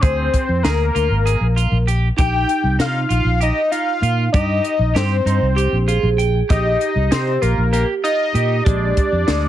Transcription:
0.01 fretless electric bass D2, clean electric guitar G#4, analog synth lead C5, kick, closed hi-hat
0.34 kick, closed hi-hat
0.49 fretless electric bass F2
0.63 fretless electric bass D2, clean electric guitar G#4, analog synth lead A#4, snare, closed hi-hat
0.95 fretless electric bass D2, clean electric guitar F4, closed hi-hat
1.10 fretless electric bass G#1
1.26 clean electric guitar G#4, closed hi-hat
1.40 fretless electric bass A#1
1.56 clean electric guitar F4, closed hi-hat
1.71 fretless electric bass A#1
1.87 clean electric guitar G4, closed hi-hat
2.17 fretless electric bass A#1, vibraphone D#4, clean electric guitar G4, analog synth lead G5, kick, closed hi-hat
2.49 closed hi-hat
2.63 fretless electric bass C2
2.79 fretless electric bass C3, clean electric guitar D#4, analog synth lead F5, snare, closed hi-hat
3.09 fretless electric bass A#1, clean electric guitar F4, analog synth lead F5, closed hi-hat
3.24 fretless electric bass A#1
3.40 clean electric guitar G4, analog synth lead D#5, closed hi-hat
3.71 clean electric guitar D#4, analog synth lead F5, closed hi-hat
4.02 fretless electric bass A#2, clean electric guitar F4, closed hi-hat
4.33 fretless electric bass G2, clean electric guitar G4, analog synth lead D#5, kick, closed hi-hat
4.65 closed hi-hat
4.79 fretless electric bass A#1
4.94 fretless electric bass G2, clean electric guitar G4, analog synth lead C5, snare, closed hi-hat
5.25 fretless electric bass G2, clean electric guitar D#4, closed hi-hat
5.41 fretless electric bass C2
5.56 vibraphone G4, clean electric guitar G4, closed hi-hat
5.72 fretless electric bass A#1
5.88 clean electric guitar F4, vibraphone G#4, closed hi-hat
6.03 fretless electric bass A#1
6.18 clean electric guitar G5, closed hi-hat
6.49 fretless electric bass A#1, clean electric guitar G4, vibraphone G4, analog synth lead D#5, kick, closed hi-hat
6.81 closed hi-hat
6.95 fretless electric bass C2
7.11 fretless electric bass C3, clean electric guitar D#4, analog synth lead C5, snare, closed hi-hat
7.42 fretless electric bass A#1, clean electric guitar F4, analog synth lead A#4, closed hi-hat
7.58 fretless electric bass A#1
7.72 clean electric guitar G4, analog synth lead A#4, closed hi-hat
8.04 clean electric guitar F4, analog synth lead D#5, closed hi-hat
8.34 fretless electric bass A#2, clean electric guitar G4, closed hi-hat
8.64 fretless electric bass A#1, clean electric guitar G#3, vibraphone G4, analog synth lead D5, kick, closed hi-hat
8.97 kick, closed hi-hat
9.12 fretless electric bass F2
9.27 fretless electric bass D2, clean electric guitar G#3, snare, closed hi-hat

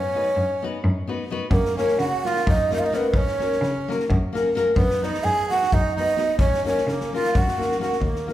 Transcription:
Already playing: cello F#2, accordion C#4, ney C#5
0.14 nylon-string guitar B3 D#4 F#4 B4
0.37 cello F#2
0.62 nylon-string guitar B3 D#4 F#4 B4
0.84 cello F#2
1.07 nylon-string guitar B3 D#4 F#4 B4
1.31 nylon-string guitar B3 D#4 F#4 B4
1.51 cello F#2, accordion A#3, ney A#4, kick
1.65 snare
1.77 nylon-string guitar A#3 C#4 F#4 A#4, accordion C#4, ney C#5, snare
1.88 snare
1.98 cello C#3, accordion F#4, ney F#5, snare
2.24 nylon-string guitar A#3 C#4 F#4 A#4, accordion F4, ney F5, snare
2.36 snare
2.47 cello F#2, accordion D#4, ney D#5, kick
2.70 nylon-string guitar A#3 C#4 F#4 A#4, accordion D#4, ney D#5, snare
2.79 accordion F4, ney F5
2.83 accordion D#4, ney D#5
2.92 nylon-string guitar A#3 C#4 F#4 A#4, accordion B3, ney B4, snare
3.13 cello F#2, accordion C#4, ney C#5, kick
3.28 snare
3.40 nylon-string guitar A#3 C#4 F#4 A#4, snare
3.52 snare
3.61 cello C#3, snare
3.88 nylon-string guitar A#3 C#4 F#4 A#4, snare
4.00 snare
4.10 cello F#2, kick
4.33 nylon-string guitar A#3 C#4 F#4 A#4, snare
4.55 nylon-string guitar A#3 C#4 F#4 A#4, snare
4.76 cello F#2, accordion B3, ney B4, kick
4.90 snare
5.02 nylon-string guitar B3 D#4 F#4 B4, accordion D#4, ney D#5, snare
5.14 snare
5.23 cello F#2, accordion G#4, ney G#5, snare
5.50 nylon-string guitar B3 D#4 F#4 B4, accordion F#4, ney F#5, snare
5.63 snare
5.72 cello F#2, accordion D#4, ney D#5, kick
5.95 nylon-string guitar B3 D#4 F#4, accordion D#4, ney D#5
5.99 nylon-string guitar B4
6.17 nylon-string guitar B3 D#4 F#4 B4, snare
6.39 cello F#2, accordion C#4, ney C#5, kick
6.54 snare
6.65 nylon-string guitar A#3 C#4 F#4 A#4, accordion C#4, ney C#5, snare
6.78 snare
6.87 cello C#3, accordion A#3, ney A#4, snare
7.00 snare
7.13 nylon-string guitar A#3 C#4 F#4 A#4, accordion F4, ney F5, snare
7.25 snare
7.35 cello F#2, accordion F#4, ney F#5, kick
7.48 snare
7.58 nylon-string guitar A#3 C#4 F#4 A#4, snare
7.71 snare
7.79 nylon-string guitar A#3 C#4 F#4 A#4, accordion F#4, ney F#5, snare
7.92 snare
8.00 cello D#2, kick
8.05 accordion A#3, ney A#4
8.16 snare
8.27 nylon-string guitar A#3 D#4 F#4 A#4, snare

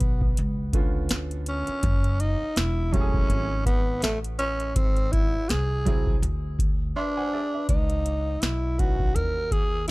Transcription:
Already playing: upright bass B1, tenor saxophone B3
0.00 kick, closed hi-hat
0.21 kick
0.37 upright bass C#2, closed hi-hat
0.73 grand piano D3 B3 C#4 F4, kick, closed hi-hat
1.09 upright bass D2, snare, closed hi-hat
1.31 closed hi-hat
1.46 tenor saxophone C#4, closed hi-hat
1.67 muted upright bass stroke, closed hi-hat
1.83 upright bass F#1, kick, closed hi-hat
2.04 closed hi-hat
2.20 tenor saxophone D#4, closed hi-hat
2.42 muted upright bass stroke
2.56 upright bass E1, tenor saxophone E4, snare, closed hi-hat
2.92 grand piano F#3 A3 E4 G4, tenor saxophone C#4, kick, closed hi-hat
3.01 grand piano G#4
3.14 kick
3.30 upright bass G#1, closed hi-hat
3.66 tenor saxophone B3, kick, closed hi-hat
4.02 upright bass A1, tenor saxophone A3, snare, closed hi-hat
4.24 closed hi-hat
4.39 tenor saxophone C#4, closed hi-hat
4.60 closed hi-hat
4.75 upright bass G#1, tenor saxophone C4, kick, closed hi-hat
4.97 closed hi-hat
5.12 tenor saxophone E4, kick, closed hi-hat
5.34 muted upright bass stroke
5.49 upright bass C2, tenor saxophone G#4, snare, closed hi-hat
5.85 grand piano F#3 C4 E4 G#4, kick, closed hi-hat
6.07 kick
6.22 upright bass D2, closed hi-hat
6.59 kick, closed hi-hat
6.96 tenor saxophone D4, grand piano B4 E5 C6
7.17 grand piano C5 F#5 G#5
7.33 grand piano G#4 D5 E5
7.54 grand piano B4 E5
7.69 upright bass C#2, tenor saxophone D#4, kick, closed hi-hat
7.90 closed hi-hat
8.06 closed hi-hat
8.41 upright bass B1, tenor saxophone E4, snare, closed hi-hat
8.78 grand piano E3 C#4 D#4 B4, tenor saxophone F#4, kick, closed hi-hat
9.00 kick
9.15 upright bass D#2, tenor saxophone A#4, closed hi-hat
9.51 tenor saxophone G#4, kick, closed hi-hat
9.87 grand piano E3, tenor saxophone E4

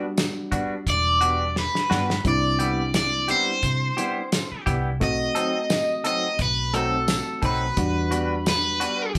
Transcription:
Already playing: reed electric piano G3 B3 D4 F#4
0.18 snare, closed hi-hat, tambourine
0.52 clean electric guitar G3 B3 D4 F#4, kick, closed hi-hat
0.87 fingered electric bass E1, overdriven electric guitar D5, kick, closed hi-hat
1.21 clean electric guitar G3 B3 D4 F#4, closed hi-hat
1.56 overdriven electric guitar B4, snare
1.75 snare
1.90 fingered electric bass G2, clean electric guitar G3 B3 D4 F#4, snare
2.10 snare
2.24 fingered electric bass C2, reed electric piano G3 C4 D4 E4, overdriven electric guitar D5, kick, closed hi-hat
2.59 clean electric guitar G3 B3 E4 G4, closed hi-hat
2.94 overdriven electric guitar D5, snare, closed hi-hat, tambourine
3.28 clean electric guitar G3 B3 E4 G4, overdriven electric guitar C5, closed hi-hat
3.63 fingered electric bass C3, kick, closed hi-hat
3.97 clean electric guitar G3 B3 E4 G4, closed hi-hat
4.32 snare, closed hi-hat, tambourine
4.52 muted fingered electric bass stroke
4.66 fingered electric bass C2, clean electric guitar G3 B3 E4 G4, kick, closed hi-hat
5.00 fingered electric bass B1, reed electric piano A3 C4 D#4 F#4, overdriven electric guitar D#5, kick, closed hi-hat
5.35 clean electric guitar F#3 C4 D#4 A4, closed hi-hat
5.70 snare, closed hi-hat, tambourine
6.04 clean electric guitar F#3 C4 D#4 A4, overdriven electric guitar D#5, closed hi-hat
6.39 fingered electric bass B1, overdriven electric guitar B4, kick, closed hi-hat
6.74 clean electric guitar F#3 C4 D#4 A4, reed electric piano A3 C4 D#4 F#4, overdriven electric guitar A4, closed hi-hat
7.08 snare, closed hi-hat, tambourine
7.42 fingered electric bass B1, clean electric guitar F#3 C4 D#4 A4, overdriven electric guitar B4, kick, closed hi-hat
7.77 fingered electric bass E2, reed electric piano G3 B3 D4 F#4, kick, closed hi-hat
8.11 clean electric guitar G3 B3 D4 F#4, closed hi-hat
8.46 overdriven electric guitar B4, snare, closed hi-hat, tambourine
8.80 clean electric guitar G3 B3 D4 F#4, closed hi-hat
9.15 fingered electric bass E3, kick, closed hi-hat

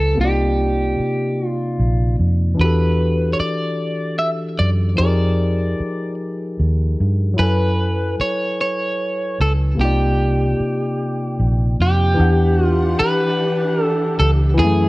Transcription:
Already playing: fingered electric bass C#2, tine electric piano F#3 E4 A4 B4 G#5, clean electric guitar A4
0.15 tine electric piano C3 A#3
0.19 fingered electric bass C2, tine electric piano D4 F4, clean electric guitar G4
0.25 tine electric piano D#4 D5
0.99 muted fingered electric bass stroke
1.48 clean electric guitar F4
1.79 fingered electric bass A#1
2.20 fingered electric bass F2
2.55 tine electric piano E3 D4
2.59 fingered electric bass E2, tine electric piano F#4 G4, clean electric guitar B4
2.65 tine electric piano A4
3.33 clean electric guitar C#5
3.40 clean electric guitar D5, muted fingered electric bass stroke
4.19 clean electric guitar E5
4.59 fingered electric bass F#2, clean electric guitar D5
4.96 fingered electric bass F2, tine electric piano F3 D#4, clean electric guitar D5
5.00 tine electric piano G4 G#4
5.05 tine electric piano A#4
5.80 muted fingered electric bass stroke
6.60 fingered electric bass D#2
7.01 fingered electric bass G2
7.34 tine electric piano F#3 E4
7.39 fingered electric bass F#2, tine electric piano A4 G#5, clean electric guitar B4
7.44 tine electric piano B4
8.20 clean electric guitar C#5, muted fingered electric bass stroke
8.61 clean electric guitar C#5
9.40 fingered electric bass C#2, clean electric guitar A4
9.75 tine electric piano C3 A#3
9.79 fingered electric bass C2, tine electric piano D#4 F4, clean electric guitar G4
9.85 tine electric piano D5
10.60 muted fingered electric bass stroke
11.39 fingered electric bass A#1
11.79 fingered electric bass F2, clean electric guitar G4
12.14 tine electric piano E3 D4, string section G4 F#5
12.18 fingered electric bass E2, string section E3 D4, tine electric piano F#5
12.24 tine electric piano G4
12.64 clean electric guitar F4
13.00 clean electric guitar B4, muted fingered electric bass stroke
13.84 clean electric guitar A4
14.20 fingered electric bass C#2, clean electric guitar A4
14.55 tine electric piano E3 E4, string section E3 E4
14.59 fingered electric bass F#2, string section A3, clean electric guitar G#4
14.64 tine electric piano A3

